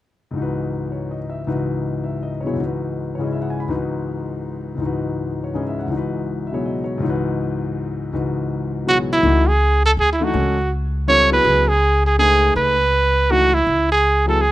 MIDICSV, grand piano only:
0, 0, Header, 1, 2, 480
1, 0, Start_track
1, 0, Key_signature, 4, "minor"
1, 0, Tempo, 369458
1, 473, Time_signature, 3, 2, 24, 8
1, 18862, End_track
2, 0, Start_track
2, 0, Title_t, "Grand piano"
2, 0, Program_c, 0, 0
2, 401, Note_on_c, 0, 37, 50
2, 435, Note_on_c, 0, 44, 42
2, 457, Note_on_c, 0, 52, 40
2, 488, Note_on_c, 0, 63, 44
2, 513, Note_on_c, 0, 66, 41
2, 544, Note_on_c, 0, 71, 55
2, 1193, Note_on_c, 0, 73, 36
2, 1443, Note_on_c, 0, 75, 37
2, 1529, Note_off_c, 0, 73, 0
2, 1684, Note_on_c, 0, 76, 43
2, 1805, Note_off_c, 0, 75, 0
2, 1880, Note_off_c, 0, 37, 0
2, 1891, Note_off_c, 0, 44, 0
2, 1896, Note_off_c, 0, 52, 0
2, 1901, Note_off_c, 0, 63, 0
2, 1907, Note_off_c, 0, 66, 0
2, 1908, Note_off_c, 0, 71, 0
2, 1909, Note_on_c, 0, 37, 48
2, 1910, Note_on_c, 0, 44, 40
2, 1916, Note_on_c, 0, 52, 40
2, 1921, Note_on_c, 0, 63, 42
2, 1927, Note_on_c, 0, 66, 42
2, 1927, Note_on_c, 0, 71, 52
2, 2015, Note_off_c, 0, 76, 0
2, 2648, Note_on_c, 0, 76, 40
2, 2894, Note_on_c, 0, 75, 45
2, 2979, Note_off_c, 0, 76, 0
2, 3126, Note_on_c, 0, 73, 45
2, 3168, Note_on_c, 0, 47, 39
2, 3183, Note_on_c, 0, 54, 35
2, 3189, Note_off_c, 0, 73, 0
2, 3195, Note_on_c, 0, 64, 39
2, 3204, Note_on_c, 0, 68, 36
2, 3209, Note_on_c, 0, 73, 45
2, 3252, Note_off_c, 0, 75, 0
2, 3270, Note_off_c, 0, 37, 0
2, 3289, Note_on_c, 0, 37, 45
2, 3300, Note_off_c, 0, 44, 0
2, 3320, Note_on_c, 0, 44, 38
2, 3331, Note_off_c, 0, 52, 0
2, 3351, Note_off_c, 0, 47, 0
2, 3351, Note_on_c, 0, 52, 38
2, 3358, Note_off_c, 0, 54, 0
2, 3361, Note_off_c, 0, 63, 0
2, 3364, Note_off_c, 0, 66, 0
2, 3364, Note_off_c, 0, 71, 0
2, 3365, Note_off_c, 0, 64, 0
2, 3369, Note_off_c, 0, 68, 0
2, 3371, Note_off_c, 0, 73, 0
2, 3382, Note_on_c, 0, 63, 39
2, 3399, Note_on_c, 0, 66, 39
2, 3438, Note_on_c, 0, 71, 44
2, 4093, Note_on_c, 0, 73, 41
2, 4115, Note_off_c, 0, 44, 0
2, 4135, Note_on_c, 0, 44, 36
2, 4146, Note_on_c, 0, 49, 39
2, 4156, Note_on_c, 0, 61, 37
2, 4165, Note_on_c, 0, 64, 39
2, 4175, Note_on_c, 0, 68, 40
2, 4204, Note_on_c, 0, 75, 42
2, 4239, Note_off_c, 0, 73, 0
2, 4322, Note_on_c, 0, 76, 43
2, 4370, Note_off_c, 0, 75, 0
2, 4438, Note_on_c, 0, 78, 45
2, 4534, Note_off_c, 0, 76, 0
2, 4550, Note_on_c, 0, 80, 48
2, 4637, Note_off_c, 0, 78, 0
2, 4678, Note_on_c, 0, 83, 51
2, 4707, Note_off_c, 0, 80, 0
2, 4766, Note_off_c, 0, 37, 0
2, 4772, Note_off_c, 0, 44, 0
2, 4773, Note_off_c, 0, 52, 0
2, 4782, Note_off_c, 0, 63, 0
2, 4787, Note_off_c, 0, 66, 0
2, 4787, Note_on_c, 0, 37, 51
2, 4791, Note_off_c, 0, 71, 0
2, 4792, Note_on_c, 0, 44, 48
2, 4792, Note_on_c, 0, 52, 43
2, 4801, Note_off_c, 0, 49, 0
2, 4801, Note_on_c, 0, 63, 48
2, 4807, Note_off_c, 0, 61, 0
2, 4807, Note_on_c, 0, 66, 46
2, 4810, Note_on_c, 0, 71, 57
2, 4811, Note_off_c, 0, 64, 0
2, 4816, Note_off_c, 0, 68, 0
2, 4847, Note_off_c, 0, 83, 0
2, 6156, Note_off_c, 0, 37, 0
2, 6175, Note_on_c, 0, 37, 43
2, 6185, Note_off_c, 0, 44, 0
2, 6205, Note_on_c, 0, 44, 42
2, 6208, Note_off_c, 0, 52, 0
2, 6228, Note_on_c, 0, 52, 41
2, 6237, Note_off_c, 0, 63, 0
2, 6245, Note_off_c, 0, 66, 0
2, 6247, Note_off_c, 0, 71, 0
2, 6257, Note_on_c, 0, 63, 43
2, 6283, Note_on_c, 0, 66, 42
2, 6314, Note_on_c, 0, 71, 50
2, 7066, Note_on_c, 0, 73, 41
2, 7175, Note_off_c, 0, 44, 0
2, 7194, Note_on_c, 0, 44, 38
2, 7205, Note_on_c, 0, 49, 34
2, 7212, Note_on_c, 0, 61, 36
2, 7217, Note_on_c, 0, 64, 37
2, 7218, Note_on_c, 0, 75, 42
2, 7231, Note_on_c, 0, 68, 44
2, 7299, Note_off_c, 0, 73, 0
2, 7375, Note_on_c, 0, 76, 44
2, 7495, Note_off_c, 0, 75, 0
2, 7525, Note_on_c, 0, 78, 46
2, 7593, Note_off_c, 0, 37, 0
2, 7612, Note_on_c, 0, 37, 43
2, 7613, Note_off_c, 0, 76, 0
2, 7619, Note_off_c, 0, 44, 0
2, 7638, Note_on_c, 0, 44, 37
2, 7649, Note_off_c, 0, 52, 0
2, 7668, Note_on_c, 0, 52, 40
2, 7678, Note_off_c, 0, 63, 0
2, 7684, Note_off_c, 0, 49, 0
2, 7688, Note_off_c, 0, 61, 0
2, 7691, Note_off_c, 0, 64, 0
2, 7697, Note_off_c, 0, 68, 0
2, 7697, Note_on_c, 0, 63, 42
2, 7704, Note_off_c, 0, 66, 0
2, 7719, Note_off_c, 0, 71, 0
2, 7725, Note_on_c, 0, 66, 39
2, 7759, Note_on_c, 0, 71, 51
2, 7768, Note_off_c, 0, 78, 0
2, 8405, Note_on_c, 0, 76, 41
2, 8465, Note_on_c, 0, 47, 42
2, 8480, Note_on_c, 0, 54, 36
2, 8489, Note_on_c, 0, 64, 37
2, 8493, Note_on_c, 0, 68, 32
2, 8498, Note_on_c, 0, 73, 46
2, 8647, Note_on_c, 0, 75, 42
2, 8740, Note_off_c, 0, 76, 0
2, 8869, Note_off_c, 0, 73, 0
2, 8888, Note_on_c, 0, 73, 49
2, 9011, Note_off_c, 0, 75, 0
2, 9044, Note_off_c, 0, 37, 0
2, 9063, Note_on_c, 0, 37, 57
2, 9077, Note_off_c, 0, 44, 0
2, 9096, Note_on_c, 0, 44, 51
2, 9106, Note_off_c, 0, 52, 0
2, 9115, Note_off_c, 0, 47, 0
2, 9122, Note_off_c, 0, 54, 0
2, 9126, Note_on_c, 0, 52, 48
2, 9127, Note_off_c, 0, 64, 0
2, 9129, Note_off_c, 0, 68, 0
2, 9131, Note_off_c, 0, 63, 0
2, 9145, Note_off_c, 0, 66, 0
2, 9152, Note_on_c, 0, 63, 51
2, 9162, Note_off_c, 0, 71, 0
2, 9182, Note_on_c, 0, 66, 53
2, 9217, Note_on_c, 0, 71, 62
2, 9221, Note_off_c, 0, 73, 0
2, 10534, Note_off_c, 0, 37, 0
2, 10549, Note_off_c, 0, 44, 0
2, 10551, Note_off_c, 0, 52, 0
2, 10552, Note_off_c, 0, 63, 0
2, 10560, Note_off_c, 0, 66, 0
2, 10562, Note_on_c, 0, 37, 46
2, 10567, Note_off_c, 0, 71, 0
2, 10569, Note_on_c, 0, 44, 40
2, 10570, Note_on_c, 0, 52, 39
2, 10571, Note_on_c, 0, 63, 42
2, 10580, Note_on_c, 0, 66, 43
2, 10586, Note_on_c, 0, 71, 51
2, 11496, Note_on_c, 0, 47, 38
2, 11515, Note_on_c, 0, 54, 38
2, 11522, Note_on_c, 0, 64, 38
2, 11528, Note_on_c, 0, 68, 34
2, 11539, Note_on_c, 0, 73, 42
2, 11978, Note_off_c, 0, 52, 0
2, 11989, Note_off_c, 0, 47, 0
2, 11992, Note_off_c, 0, 63, 0
2, 11997, Note_on_c, 0, 52, 53
2, 11999, Note_off_c, 0, 54, 0
2, 12001, Note_off_c, 0, 66, 0
2, 12002, Note_off_c, 0, 37, 0
2, 12002, Note_on_c, 0, 57, 50
2, 12003, Note_off_c, 0, 64, 0
2, 12005, Note_off_c, 0, 68, 0
2, 12006, Note_off_c, 0, 44, 0
2, 12011, Note_off_c, 0, 73, 0
2, 12011, Note_on_c, 0, 63, 53
2, 12014, Note_off_c, 0, 71, 0
2, 12020, Note_on_c, 0, 66, 63
2, 12274, Note_off_c, 0, 52, 0
2, 12277, Note_off_c, 0, 57, 0
2, 12281, Note_off_c, 0, 63, 0
2, 12286, Note_off_c, 0, 66, 0
2, 13255, Note_on_c, 0, 52, 62
2, 13264, Note_on_c, 0, 57, 63
2, 13268, Note_on_c, 0, 63, 59
2, 13276, Note_on_c, 0, 66, 68
2, 13418, Note_off_c, 0, 52, 0
2, 13423, Note_off_c, 0, 57, 0
2, 13423, Note_off_c, 0, 66, 0
2, 13425, Note_off_c, 0, 63, 0
2, 13429, Note_on_c, 0, 56, 50
2, 13433, Note_on_c, 0, 61, 57
2, 13442, Note_on_c, 0, 66, 51
2, 13452, Note_on_c, 0, 69, 60
2, 13709, Note_off_c, 0, 56, 0
2, 13711, Note_off_c, 0, 61, 0
2, 13716, Note_off_c, 0, 66, 0
2, 13721, Note_off_c, 0, 69, 0
2, 14391, Note_on_c, 0, 55, 53
2, 14400, Note_on_c, 0, 60, 52
2, 14409, Note_on_c, 0, 65, 55
2, 14413, Note_on_c, 0, 69, 63
2, 14669, Note_off_c, 0, 55, 0
2, 14674, Note_off_c, 0, 60, 0
2, 14678, Note_off_c, 0, 65, 0
2, 14681, Note_off_c, 0, 69, 0
2, 14688, Note_on_c, 0, 54, 57
2, 14701, Note_on_c, 0, 59, 51
2, 14703, Note_on_c, 0, 64, 59
2, 14718, Note_on_c, 0, 68, 60
2, 14830, Note_off_c, 0, 54, 0
2, 14836, Note_off_c, 0, 59, 0
2, 14847, Note_off_c, 0, 64, 0
2, 14849, Note_on_c, 0, 54, 56
2, 14855, Note_off_c, 0, 68, 0
2, 14856, Note_on_c, 0, 59, 51
2, 14867, Note_on_c, 0, 64, 50
2, 14874, Note_on_c, 0, 68, 62
2, 15138, Note_off_c, 0, 54, 0
2, 15142, Note_off_c, 0, 59, 0
2, 15147, Note_off_c, 0, 64, 0
2, 15151, Note_off_c, 0, 68, 0
2, 15832, Note_on_c, 0, 57, 56
2, 15840, Note_on_c, 0, 63, 48
2, 15844, Note_on_c, 0, 68, 45
2, 15856, Note_on_c, 0, 71, 56
2, 16558, Note_off_c, 0, 57, 0
2, 16561, Note_off_c, 0, 63, 0
2, 16564, Note_off_c, 0, 68, 0
2, 16570, Note_off_c, 0, 71, 0
2, 17277, Note_on_c, 0, 52, 54
2, 17286, Note_on_c, 0, 57, 54
2, 17286, Note_on_c, 0, 63, 49
2, 17298, Note_on_c, 0, 66, 64
2, 17550, Note_off_c, 0, 52, 0
2, 17554, Note_off_c, 0, 63, 0
2, 17555, Note_off_c, 0, 57, 0
2, 17561, Note_off_c, 0, 66, 0
2, 18527, Note_on_c, 0, 54, 64
2, 18536, Note_on_c, 0, 59, 51
2, 18546, Note_on_c, 0, 64, 55
2, 18552, Note_on_c, 0, 68, 70
2, 18690, Note_off_c, 0, 54, 0
2, 18694, Note_off_c, 0, 59, 0
2, 18699, Note_off_c, 0, 64, 0
2, 18702, Note_off_c, 0, 68, 0
2, 18862, End_track
0, 0, End_of_file